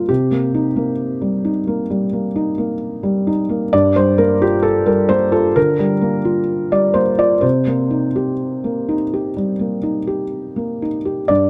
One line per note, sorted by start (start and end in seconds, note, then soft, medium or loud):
0.00 0.11 D3 soft
0.00 0.11 G3 soft
0.00 0.11 A#3 soft
0.00 0.12 F4 soft
0.00 0.11 A#4 medium
0.09 1.87 C3 medium
0.09 3.27 G4 medium
0.31 0.68 A#3 soft
0.54 0.91 D#4 soft
0.76 1.49 A#3 soft
1.21 1.58 G3 soft
1.45 1.81 D#4 soft
1.67 2.04 A#3 soft
1.90 2.27 G3 soft
2.13 2.49 A#3 soft
2.36 2.72 D#4 medium
2.58 3.31 A#3 soft
3.03 3.40 G3 soft
3.27 3.63 D#4 medium
3.49 3.72 A#3 soft
3.73 5.53 G2 medium
3.73 3.96 D5 medium
3.96 4.33 G3 soft
3.96 4.19 C5 medium
4.18 4.55 A#3 medium
4.18 4.41 A#4 medium
4.41 5.15 F4 medium
4.41 4.65 G4 medium
4.63 4.87 A4 medium
4.86 5.23 G3 medium
4.86 5.10 A#4 medium
5.09 5.46 A#3 medium
5.09 5.33 C5 medium
5.32 5.69 F4 medium
5.32 5.56 A4 medium
5.56 5.93 D3 soft
5.56 6.72 A#4 medium
5.79 6.16 G3 medium
6.01 6.39 A#3 medium
6.25 7.00 F4 medium
6.72 7.10 G3 soft
6.72 6.96 D5 medium
6.94 7.34 A#3 soft
6.94 7.19 C5 medium
7.18 7.43 F4 soft
7.18 7.43 D5 medium
7.41 9.33 C3 medium
7.41 10.80 C5 medium
7.67 8.07 A#3 soft
7.90 8.31 D#4 soft
8.16 8.94 G4 soft
8.64 9.03 A#3 soft
8.89 9.28 D#4 soft
9.13 9.52 G4 soft
9.36 9.75 G3 soft
9.59 9.99 A#3 soft
9.83 10.23 D#4 soft
10.07 10.85 G4 soft
10.56 10.95 A#3 soft
10.82 11.20 D#4 soft
11.05 11.29 G4 soft
11.28 11.50 G2 medium
11.28 11.50 D5 medium